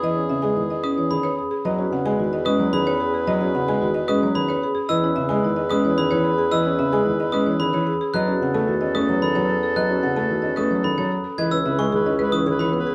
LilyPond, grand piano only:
\new Staff \with { instrumentName = "Grand piano" } { \clef bass \time 3/4 \key b \mixolydian \tempo 4 = 111 e16 cis'16 cis16 gis16 dis16 r8 e16 dis16 r8. | fis16 cis'16 cis16 gis16 dis16 r16 gis16 fis16 dis16 r8. | fis16 cis'16 cis16 gis16 dis16 r16 gis16 fis16 dis16 r8. | e16 cis'16 cis16 gis16 dis16 r16 gis16 e16 dis16 e16 r8 |
e16 cis'16 cis16 gis16 dis16 r16 gis16 e16 dis16 e16 r8 | fis16 cis'16 cis16 a16 dis16 cis'16 a16 fis16 dis16 fis16 r8 | fis16 cis'16 cis16 a16 dis16 cis'16 a16 fis16 dis16 fis16 r8 | \key cis \minor e16 cis'16 cis16 gis16 dis16 cis'16 gis16 e16 dis16 e16 b16 r16 | }